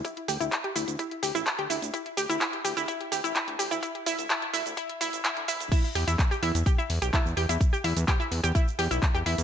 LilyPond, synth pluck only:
\new Staff \with { instrumentName = "Synth pluck" } { \time 4/4 \key e \minor \tempo 4 = 127 e'16 r16 g'16 e'16 r16 g'16 e'16 r16 e'16 r16 g'16 e'16 r16 g'16 e'16 r16 | e'16 r16 g'16 e'16 e'16 r16 g'16 e'16 e'16 r16 g'16 e'16 e'16 r16 g'16 e'16 | e'16 r16 e'16 r16 e'16 r16 e'16 r16 e'16 r16 e'16 r16 e'16 r16 e'16 r16 | <e' e''>16 r16 <g' g''>16 <e' e''>16 r16 <g' g''>16 <e' e''>16 r16 <g' g''>16 <e' e''>16 r16 <g' g''>16 <e' e''>16 r16 <g' g''>16 <e' e''>16 |
r16 <g' g''>16 <e' e''>16 r16 <g' g''>16 <e' e''>16 r16 <g' g''>16 <e' e''>16 r16 <g' g''>16 <e' e''>16 r16 <g' g''>16 <e' e''>16 r16 | }